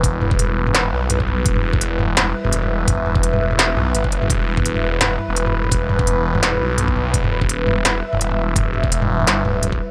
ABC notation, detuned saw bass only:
X:1
M:4/4
L:1/16
Q:"Swing 16ths" 1/4=169
K:Em
V:1 name="Detuned saw bass" clef=bass
E,,,8- E,,,2 B,,,6 | E,,,8- E,,,2 z E,,,4- E,,, | E,,,8- E,,,2 B,,,2 G,,,2 F,,,2 | E,,,8- E,,,2 z E,,,4- E,,, |
E,,,8- E,,,2 B,,,6 | E,,,8- E,,,2 z E,,,4- E,,, | E,,,8 G,,,2 D,,,4 z2 |]